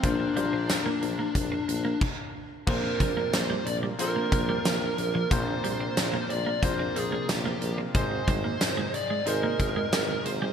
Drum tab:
CC |------x-|x-------|--------|--------|
HH |xxxxxx--|-xxxxxxx|xxxxxxxx|xxxxxxxx|
TB |--x-----|--x---x-|--x---x-|--x---x-|
SD |--o-----|--o---o-|--o---o-|--o---o-|
BD |o---o-o-|oo---o--|o---o---|oo---o--|